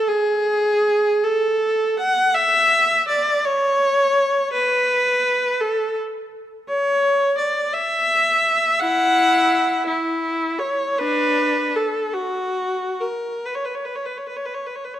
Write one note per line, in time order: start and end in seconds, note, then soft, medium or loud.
0.08 1.24 G#4 loud
1.24 1.98 A4 medium
1.97 2.34 F#5 loud
2.34 3.07 E5 loud
3.08 3.44 D5 medium
3.45 4.53 C#5 loud
4.53 5.59 B4 loud
5.60 5.98 A4 medium
6.68 7.34 C#5 loud
7.38 7.74 D5 medium
7.74 8.80 E5 loud
8.80 9.83 E4 medium
8.80 9.86 F#5 loud
9.87 10.58 E4 medium
10.59 10.97 C#5 medium
10.98 11.72 D4 medium
10.98 11.76 B4 loud
11.76 12.15 A4 medium
12.14 13.00 F#4 medium
13.01 13.48 A#4 medium
13.45 13.57 B4 medium
13.55 13.66 C#5 medium
13.65 13.77 B4 medium
13.75 13.87 C#5 medium
13.85 13.97 B4 medium
13.96 14.07 C#5 medium
14.05 14.17 B4 medium
14.18 14.28 C#5 medium
14.27 14.37 B4 medium
14.36 14.47 C#5 medium
14.46 14.56 B4 medium
14.54 14.65 C#5 medium
14.66 14.76 B4 soft
14.76 14.85 C#5 soft
14.85 14.94 B4 soft
14.94 15.00 C#5 soft